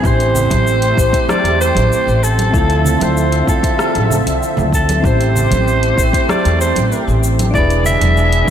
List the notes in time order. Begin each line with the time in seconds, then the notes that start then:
0.00 A1 A3 C4 E4, kick
0.04 G4 C5, shaker
0.20 closed hi-hat, shaker
0.35 low conga, shaker
0.50 A1, kick, closed hi-hat, high conga, shaker
0.67 shaker
0.82 closed hi-hat, shaker
0.93 C4 E4, kick
0.98 A1 G4 C5, shaker
1.13 kick, closed hi-hat, shaker
1.29 D5, cross-stick, high conga, shaker
1.44 E2, closed hi-hat, shaker
1.61 C5, shaker
1.75 A1, closed hi-hat, high conga, shaker
1.92 shaker
2.07 A1, shaker
2.23 A4, shaker
2.38 closed hi-hat, high conga, shaker
2.51 D2 D3 F3 C4 E4 E5, kick, shaker
2.56 F4 A4
2.70 closed hi-hat, shaker
2.85 low conga, shaker
3.00 D2 C5, closed hi-hat, high conga, shaker
3.17 shaker
3.32 closed hi-hat, shaker
3.44 D2 C4 E4, kick
3.48 F4 A4, shaker
3.63 kick, closed hi-hat, shaker
3.79 cross-stick, shaker
3.95 A1, closed hi-hat, high conga, shaker
4.10 low conga, shaker
4.27 C2, closed hi-hat, shaker
4.43 shaker
4.57 D2, high conga, low conga, shaker
4.72 A4, kick, shaker
4.89 closed hi-hat, high conga, shaker
5.00 A1 A3 C4 E4 G4, kick
5.05 G4 C5, shaker
5.21 closed hi-hat, shaker
5.35 low conga, shaker
5.51 A1, kick, closed hi-hat, high conga, shaker
5.68 shaker
5.83 closed hi-hat, shaker
5.94 A1 C4 E4, kick
5.98 G4 C5, shaker
6.13 kick, closed hi-hat, shaker
6.29 D5, cross-stick, high conga, shaker
6.45 E2, closed hi-hat, shaker
6.61 C5, shaker
6.76 A1, closed hi-hat, high conga, shaker
6.92 shaker
7.07 A1, shaker
7.24 shaker
7.39 closed hi-hat, high conga, shaker
7.51 E1 E3 D4 E4 D5, kick
7.55 B2 G#4 B4, shaker
7.70 closed hi-hat, shaker
7.84 E5, low conga, shaker
8.01 E1, closed hi-hat, high conga, shaker
8.17 shaker
8.33 closed hi-hat, shaker
8.44 D4 E4